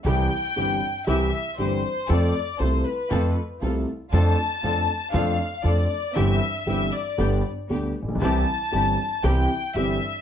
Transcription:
<<
  \new Staff \with { instrumentName = "Violin section" } { \time 4/4 \key c \major \tempo 4 = 117 g''2 e''4 c''4 | d''4 c''8 b'4 r4. | a''2 f''4 d''4 | e''4 e''8 d''4 r4. |
a''2 g''4 e''4 | }
  \new Staff \with { instrumentName = "String section" } { \time 4/4 \key c \major <c' e' g'>8 r8 <c' e' g'>8 r8 <c' e' g'>8 r8 <c' e' g'>8 r8 | <c' f' a'>8 r8 <c' f' a'>8 r8 <c' f' a'>8 r8 <c' f' a'>8 r8 | <d' f' a'>8 r8 <d' f' a'>8 r8 <d' f' a'>8 r8 <d' f' a'>8 r8 | <c' e' g'>8 r8 <c' e' g'>8 r8 <b d' g'>8 r8 <b d' g'>8 r8 |
<c' e' g'>8 r8 <c' e' g'>8 r8 <c' e' g'>8 r8 <c' e' g'>8 r8 | }
  \new Staff \with { instrumentName = "Grand piano" } { \clef bass \time 4/4 \key c \major <c, c e g c' g'>8 r8 <g,, g, e g c' g'>8 r8 <c, c e g c' g'>8 r8 <g,, g, e g c' g'>8 r8 | <f, f a c' a'>8 r8 <c, c f a c' a'>8 r8 <f, f a c' a'>8 r8 <c, c f a c' a'>8 r8 | <f, f a d' a'>8 r8 <f, f a d' a'>8 r8 <f, f a d' a'>8 r8 <f, f a d' a'>8 r8 | <g,, g, e g c' g'>8 r8 <g,, g, e g c' g'>8 r8 <g,, g, d g b g'>8 r8 <d, d g b g'>8 r32 a,,32 bes,,32 b,,32 |
<c, c e g c' g'>8 r8 <g,, g, e g c' g'>8 r8 <c, c e g c' g'>8 r8 <g,, g, e g c' g'>8 r8 | }
  \new Staff \with { instrumentName = "Upright bass" } { \clef bass \time 4/4 \key c \major c,16. r8 r32 g,,16. r8 r32 c,16. r8 r32 g,,16. r8 r32 | f,16. r8 r32 c,16. r8 r32 f,16. r8 r32 c,16. r8 r32 | f,16. r8 r32 f,16. r8 r32 f,16. r8 r32 f,16. r8 r32 | g,,16. r8 r32 g,,16. r8 r32 g,,16. r8 r32 d,16. r16 a,,32 bes,,32 b,,32 |
c,16. r8 r32 g,,16. r8 r32 c,16. r8 r32 g,,16. r8 r32 | }
>>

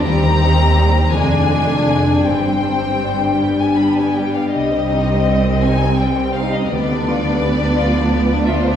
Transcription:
<<
  \new Staff \with { instrumentName = "Violin section" } { \time 6/8 \key c \minor \tempo 4. = 55 bes''4. aes''4. | g''4.~ g''16 aes''16 b''16 aes''16 g''16 f''16 | ees''4. aes''8 g''8 f''16 ees''16 | d''2~ d''8 e''32 d''32 c''32 d''32 | }
  \new Staff \with { instrumentName = "Harp" } { \time 6/8 \key c \minor ees8 ees'8 <ees' c''>8 f8 d'8 <d' d''>8 | g,8 c'8 <d' d''>8 g,8 b8 <d' d''>8 | c8 g8 c''8 ees''8 c''8 ees'8 | d8 f8 b'8 f''8 b'8 f'8 | }
  \new Staff \with { instrumentName = "Violin section" } { \time 6/8 \key c \minor << { g'4. aes'4. | c''4. g'4.~ | g'2. | b'2. | } \\ { g16 c'16 ees'16 c'16 g16 c'16 aes16 d'16 aes16 d'16 aes16 d'16 | g16 c'16 d'16 c'16 g16 c'16 g16 b16 d'16 b16 g16 b16 | g16 c'16 ees'16 c'16 g16 c'16 ees'16 c'16 g16 c'16 ees'16 c'16 | b16 d'16 f'16 d'16 b16 d'16 f'16 d'16 b16 d'16 f'16 d'16 | } >> }
  \new Staff \with { instrumentName = "Viola section" } { \time 6/8 \key c \minor << { c'4. d'4. | c'4. b4 r8 | c'2. | b2. | } \\ { g4. d4. | g2.~ | g2.~ | g4. f4. | } >> }
  \new Staff \with { instrumentName = "Cello section" } { \clef bass \time 6/8 \key c \minor ees,4. f,4. | g,2~ g,8 r8 | c,2. | d,2. | }
  \new Staff \with { instrumentName = "Double bass section" } { \clef bass \time 6/8 \key c \minor ees,4. f,,4. | g,,2~ g,,8 r8 | c,2. | d,2. | }
>>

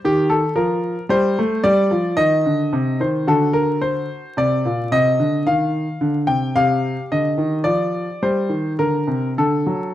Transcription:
<<
  \new Staff \with { instrumentName = "Grand piano" } { \time 3/4 \key c \dorian \tempo 4 = 55 << { g'16 a'16 bes'8 c''8 d''8 ees''8. c''16 | a'16 bes'16 c''8 d''8 ees''8 f''8. g''16 | f''8 ees''8 d''8 c''8 bes'8 a'8 | } \\ { r2. | fis'2 r4 | g'2 r4 | } >> }
  \new Staff \with { instrumentName = "Grand piano" } { \clef bass \time 3/4 \key c \dorian ees8 f8 g16 a16 g16 f16 ees16 d16 c16 ees16 | d4 c16 bes,16 c16 d16 ees8 d16 c16 | c8 d16 ees16 f8 g16 ees16 d16 c16 d16 fis16 | }
>>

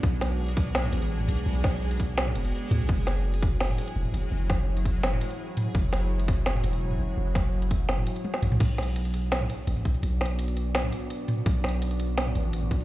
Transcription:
<<
  \new Staff \with { instrumentName = "Ambient pad" } { \time 4/4 \key b \dorian \tempo 4 = 168 <b d' fis' d''>1~ | <b d' fis' d''>1 | <fis e' fis' cis''>1~ | <fis e' fis' cis''>1~ |
<fis e' fis' cis''>1~ | <fis e' fis' cis''>1 | <b d' fis' d''>1~ | <b d' fis' d''>1~ |
<b d' fis' d''>1 | }
  \new Staff \with { instrumentName = "Synth texture" } { \time 4/4 \key b \dorian <gis gis'>1~ | <gis gis'>1~ | <gis gis'>1~ | <gis gis'>1~ |
<gis gis'>1~ | <gis gis'>1 | r1 | r1 |
r1 | }
  \new Staff \with { instrumentName = "808-style bass" } { \clef bass \time 4/4 \key b \dorian b,,2~ b,,8 a,,4 b,,16 r16 | b,,2~ b,,8 fis,,8 r8 d,16 b,,16 | fis,,2~ fis,,8 r8 e,,16 r16 fis,,16 r16 | fis,,2~ fis,,8 r4. |
fis,,2~ fis,,8 e,,4 fis,,16 r16 | fis,,2~ fis,,8 r4 gis,,16 cis,16 | b,,2~ b,,8 r8 a,,16 r16 b,,16 r16 | b,,2~ b,,8 r4. |
b,,2~ b,,8 a,,4 b,,16 r16 | }
  \new DrumStaff \with { instrumentName = "Drums" } \drummode { \time 4/4 bd8 <hho sn>8 r16 hho16 <hh bd>8 <hho sn>16 toml16 hh16 hh16 r16 toml16 hh8 | r8 <hho bd sn>8 r16 hho16 <hh bd>8 sn16 toml16 hh16 hh16 r8 <hh toml>8 | bd8 <hho sn>8 r16 hho16 <hh bd>8 <hho sn>16 toml16 hh16 hh16 r16 toml16 hh8 | r8 <hho bd sn>8 r16 hho16 <hh bd>8 sn16 toml16 hh16 hh16 r8 <hh toml>8 |
bd8 sn8 r16 hho16 <hh bd>8 <hho sn>16 toml16 hh16 hh16 r16 toml8. | r8 <hho bd sn>8 r16 hho16 <hh bd>8 sn16 toml16 hh16 hh16 tommh16 sn16 <hh toml>16 toml16 | <cymc hh bd>8 <hho sn>32 hh16. hh16 hho16 hh8 <hh sn>16 toml16 hh8 hh16 toml16 <hh bd>16 hho16 | hh8 <hho sn>32 hh16. hh16 hho16 hh8 <hh sn>16 toml16 hh8 hh8 <hh toml>8 |
<hh bd>8 <hho sn>32 hh16. hh16 hho16 hh8 <hh sn>16 toml16 hh8 hh16 toml16 <hh bd>16 hho16 | }
>>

